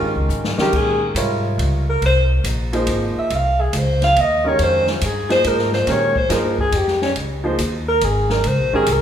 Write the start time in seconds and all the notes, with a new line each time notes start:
Already playing: D#3 G#3 C#4 G4 A#4
0.01 F2
0.15 C#2
0.29 G#2, hi-hat pedal
0.44 snare
0.58 D#3 G#3 C#4 G4 A#4, muted upright bass stroke, snare
0.72 A#2, kick, crash
0.76 G#4
1.15 G#2 C3 G3 F4 A#4 C#5, hi-hat pedal, ride
1.58 C#2, ride
1.90 A#4
2.01 C2, ride
2.06 C5
2.44 A#1, hi-hat pedal, ride
2.73 F3 A#3 D#4 G#4 C5, ride
2.86 G#1, ride
3.16 E5, muted upright bass stroke
3.30 C2, ride
3.35 F5
3.60 G#4
3.73 C#2, hi-hat pedal, ride
3.78 C5
4.02 F5, snare, ride
4.16 D#2, ride
4.21 D#5
4.44 D#3 G#3 C#4 G4 A#4 C#5
4.59 F2 C5, ride
4.87 F4, snare
5.01 G2, hi-hat pedal, ride
5.05 G#4
5.29 F3 A#3 D#4 G#4 C5, snare, ride
5.44 G#2 A#4, ride
5.58 snare
5.73 C5, snare
5.87 A#2 D#3 G#3 C#4 G4 A#4 C#5, snare, ride
6.16 C5, kick
6.29 G2 F3 A#3 D#4 G#4 A#4 C5, snare, hi-hat pedal, ride
6.58 G#4, kick
6.72 F2 G4, ride
6.87 snare
7.02 C#4, snare
7.16 C#2, ride
7.44 F3 A#3 D#4 G#4 C5
7.58 D#2, hi-hat pedal, ride
7.88 A#4
8.01 G#1 G#4, ride
8.30 A#4, snare
8.44 C#2 C5, ride
8.59 A#1
8.73 G#1 D#3 G#3 C#4 G4 G#4 A#4
8.86 C2, hi-hat pedal, ride
8.93 A#4